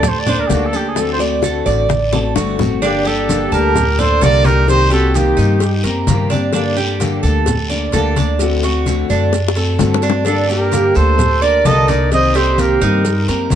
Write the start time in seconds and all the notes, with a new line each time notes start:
Already playing: D2 A4
0.03 muted steel-string acoustic guitar stroke, high bongo, high conga, low conga, long guiro, maracas
0.08 C5
0.19 D5
0.26 A#3 D4 A4 C5, high bongo, high conga, low conga, maracas
0.39 A#4
0.47 D2 D3 G3 A#3 D4 G4, high bongo, low bongo, high conga, short guiro, maracas
0.52 F#4 A4
0.66 A4
0.73 A#3 D4 G4 A4, high bongo, short guiro, maracas
0.88 G#4
0.95 D3 A3 C4 F#4, high bongo, high conga, long guiro, maracas
1.00 A4
1.12 C5
1.19 A3 C4 F#4 D5, high bongo, high conga, maracas
1.41 D3 A3 C4 F#4 A4, high bongo, high conga, short guiro, maracas
1.66 A1 D5, high conga, short guiro, maracas
1.88 muted steel-string acoustic guitar stroke, high bongo, high conga, long guiro, maracas
2.12 A3 C4 F#4 A4, high bongo, high conga, maracas
2.35 G1 D3 A3 C4 F#4, low bongo, short guiro, maracas
2.59 A3 C4 F#4, low bongo, low conga, short guiro, maracas
2.82 D3 G3 A#3 D4 G4 A4, cowbell, high conga, long guiro, maracas
3.04 A#3 D4 G4 A4, high conga, maracas
3.28 D3 G3 A#3 D4 A4, cowbell, high conga, short guiro, maracas
3.52 D2 G4 A#4 A5, high conga, short guiro, maracas
3.75 muted steel-string acoustic guitar stroke, cowbell, high conga, low conga, long guiro, maracas
3.98 A#3 D4 A4 C5 D5, high conga, low conga, maracas
4.21 C2 D3 G3 A#3 D4 A4 A#4 D5, cowbell, high conga, short guiro, maracas
4.44 D4 D#4 G4 A4 A#4, cowbell, high conga, short guiro, maracas
4.67 C3 D#3 A#3 C4 G4 C5, cowbell, high conga, long guiro, maracas
4.90 A#3 C4 F#4 G4 A4, cowbell, high conga, maracas
5.14 C3 D#3 A#3 C4 D#4 G4, cowbell, high conga, short guiro, maracas
5.37 G2 D#4, high conga, short guiro, maracas
5.60 muted steel-string acoustic guitar stroke, cowbell, high conga, long guiro, maracas
5.84 F#2 A#3 C4 G4 A#4, cowbell, high conga, maracas
6.07 G2 C3 D#3 A#3 C4 G4, cowbell, high conga, short guiro, maracas
6.30 A#3 C4 D4 G4, cowbell, high conga, short guiro, maracas
6.53 D3 G3 A#3 D4 A4, cowbell, high conga, long guiro, maracas
6.76 A#3 D4 G4 A4, high conga, maracas
6.99 D3 G3 A#3 D4 A4, cowbell, high conga, short guiro, maracas
7.23 D2 A4, high conga, short guiro, maracas
7.46 muted steel-string acoustic guitar stroke, cowbell, high conga, low conga, long guiro, maracas
7.70 A#3 D4 A4 D5, high conga, maracas
7.92 D2 D3 G3 A#3 D4 A4, cowbell, high conga, short guiro, maracas
8.16 A#3 D4 A4, cowbell, high conga, short guiro, maracas
8.39 D3 A3 C4 F#4, cowbell, high conga, long guiro, maracas
8.63 A3 C4 F#4, cowbell, high conga, maracas
8.86 D3 A3 C4 F#4, cowbell, high conga, short guiro, maracas
9.09 F#2 D4, high conga, short guiro, maracas
9.32 muted steel-string acoustic guitar stroke, cowbell, high bongo, high conga, long guiro, maracas
9.48 high bongo
9.55 A3 C4 F#4 A4, cowbell, high conga, maracas
9.78 G2 D3 A3 C4 F#4, cowbell, low bongo, high conga, short guiro, maracas
9.94 low bongo
10.01 A3 C4 D4 F#4, cowbell, short guiro, maracas
10.10 low bongo
10.25 D3 G3 A#3 D4 A4, cowbell, high conga, long guiro, maracas
10.48 A#3 D4 G4 A4 A#4, high conga, maracas
10.71 D3 G3 A#3 D4 A4, cowbell, high conga, short guiro, maracas
10.95 D2 A4 C5, high conga, short guiro, maracas
11.18 muted steel-string acoustic guitar stroke, cowbell, high conga, low conga, long guiro, maracas
11.41 A#3 D4 A4 A#4 D5, high conga, maracas
11.64 C2 D3 G3 A#3 D4 A4 A#4 D#5, cowbell, high conga, short guiro, maracas
11.87 A#3 D4 D#4 A4 A#4 D5, cowbell, high conga, short guiro, maracas
12.11 C3 D#3 A#3 C4 G4 C5 D#5, cowbell, high conga, long guiro, maracas
12.35 A#3 C4 G4 A4 C5, cowbell, high conga, maracas
12.57 C3 D#3 A#3 C4 G4 A#4, cowbell, high conga, short guiro, maracas
12.61 G4
12.81 G2 D#4, high conga, short guiro, maracas
13.04 muted steel-string acoustic guitar stroke, cowbell, high conga, long guiro, maracas
13.28 F#2 A#3 C4 G4 A#4, cowbell, high conga, maracas
13.50 G2 C3 D#3 A#3, cowbell, high conga, short guiro, maracas